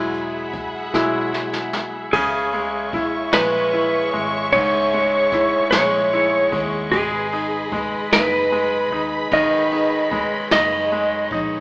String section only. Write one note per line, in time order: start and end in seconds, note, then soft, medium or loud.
0.00 2.11 G#4 medium
0.00 2.11 E5 medium
0.00 2.11 F#5 medium
0.00 2.11 B5 medium
2.13 11.60 G#4 medium
2.13 6.89 C#5 medium
2.13 6.88 E5 medium
2.13 6.88 C#6 medium
6.92 11.60 B4 medium
6.92 9.29 D#5 medium
6.92 11.60 B5 medium
9.33 11.60 C#5 medium